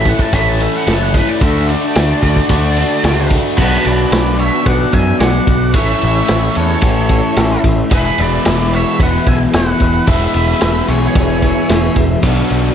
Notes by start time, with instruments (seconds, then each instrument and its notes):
Already playing: picked electric bass A1
0.05 overdriven electric guitar A2 E3 A3 C#4, lead electric guitar F#5, kick, ride
0.09 overdriven electric guitar E4
0.19 lead electric guitar A5, kick
0.32 picked electric bass A1, overdriven electric guitar A2 E3 A3 C#4 E4, lead electric guitar B5, kick, ride
0.48 lead electric guitar A5
0.59 overdriven electric guitar A2 E3 A3 C#4 E4, lead electric guitar E5, ride
0.77 lead electric guitar F#5
0.87 picked electric bass F#1, overdriven electric guitar A2 E3 A3 C#4 E4, lead electric guitar A5, snare, ride
1.02 lead electric guitar F#5
1.14 overdriven electric guitar A2 E3 A3 C#4 E4, lead electric guitar B4, kick, ride
1.29 lead electric guitar D5
1.41 picked electric bass D2, overdriven electric guitar D3 A3 D4 F#4, lead electric guitar E5, kick, ride
1.69 overdriven electric guitar D3 A3 D4 F#4, lead electric guitar D5, ride
1.95 picked electric bass D2, overdriven electric guitar D3 A3 D4 F#4, snare, ride
2.23 picked electric bass D2, overdriven electric guitar D3 A3 D4 F#4, kick, ride
2.36 kick
2.49 picked electric bass D2, overdriven electric guitar D3 A3, kick, ride
2.53 overdriven electric guitar D4 F#4
2.77 overdriven electric guitar D3 A3 D4 F#4, ride
3.04 picked electric bass C#2, overdriven electric guitar D3 A3 D4 F#4, snare, ride
3.30 overdriven electric guitar D3 A3, kick, ride
3.34 overdriven electric guitar D4 F#4
3.57 picked electric bass B1, overdriven electric guitar B2 F#3, tonewheel organ D4 F#4 B4 F#5, lead electric guitar F#4 B4, kick, crash
3.61 overdriven electric guitar B3 D4 F#4
3.85 picked electric bass B1, lead electric guitar B4 D5, ride
4.12 picked electric bass B1, snare, ride
4.39 lead electric guitar C#5 E5, ride
4.66 picked electric bass B1, lead electric guitar D5 F#5, kick, ride
4.93 picked electric bass F#2, lead electric guitar E5 G#5, kick, ride
5.19 picked electric bass B1, lead electric guitar D5 F#5, snare, ride
5.34 snare
5.47 picked electric bass B1, kick, ride
5.74 picked electric bass A1, overdriven electric guitar A2 E3 A3 C#4, tonewheel organ C#4 E4 A4 E5, lead electric guitar C#5 E5, kick, ride
5.78 overdriven electric guitar E4
6.01 picked electric bass A1, ride
6.28 picked electric bass A1, snare, ride
6.55 picked electric bass E2, lead electric guitar A4 C#5, ride
6.82 picked electric bass A1, kick, ride
7.09 kick, ride
7.36 picked electric bass A1, snare, ride
7.51 snare
7.64 picked electric bass A1, kick, ride
7.90 picked electric bass E1, overdriven electric guitar E2 B2 E3 G#3 B3 E4, tonewheel organ B3 E4 G#4 E5, lead electric guitar B4, kick, ride
7.96 lead electric guitar G#4
8.18 picked electric bass E1, lead electric guitar B4 D5, ride
8.45 picked electric bass E1, snare, ride
8.73 lead electric guitar C#5 E5, ride
8.99 picked electric bass E1, lead electric guitar B4 F#5, kick, ride
9.14 snare
9.26 picked electric bass B1, lead electric guitar E5 G#5, kick, ride
9.53 picked electric bass E1, lead electric guitar B4 F#5, snare, ride
9.68 snare
9.80 picked electric bass E1, kick, ride
10.06 picked electric bass E1, overdriven electric guitar E2 B2 E3 G#3 B3, lead electric guitar B4 E5, kick, ride
10.10 overdriven electric guitar E4
10.34 picked electric bass E1, ride
10.61 picked electric bass E1, snare, ride
10.88 picked electric bass B1, lead electric guitar G#4 C#5, ride
11.15 picked electric bass E1, kick, ride
11.42 kick, ride
11.69 picked electric bass E1, snare, ride
11.84 snare
11.96 picked electric bass E1, kick, ride
12.22 picked electric bass B1, overdriven electric guitar B2 F#3 B3 D4, tonewheel organ B3 D4 F#4 D5, kick, crash
12.26 overdriven electric guitar F#4
12.50 picked electric bass B1, ride